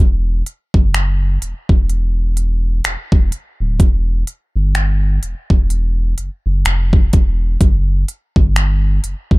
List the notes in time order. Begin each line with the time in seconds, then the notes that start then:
0.00 E1
0.46 closed hi-hat
0.74 F#1, kick
0.94 finger snap, closed hi-hat
1.42 E1, closed hi-hat
1.69 E1, kick
1.90 closed hi-hat
2.37 closed hi-hat
2.84 E1, finger snap, closed hi-hat
3.12 E1, kick
3.32 closed hi-hat
3.60 D1
3.80 E1, kick, closed hi-hat
4.27 closed hi-hat
4.56 G1
4.75 finger snap, closed hi-hat
5.23 E1, closed hi-hat
5.50 E1, kick
5.70 closed hi-hat
6.18 F#1, closed hi-hat
6.46 F#1
6.65 F1, finger snap, closed hi-hat
6.93 kick
7.13 E1, kick, closed hi-hat
7.61 F#1, kick, closed hi-hat
8.08 closed hi-hat
8.36 G1, kick
8.56 finger snap, closed hi-hat
9.04 F#1, closed hi-hat
9.31 F#1, kick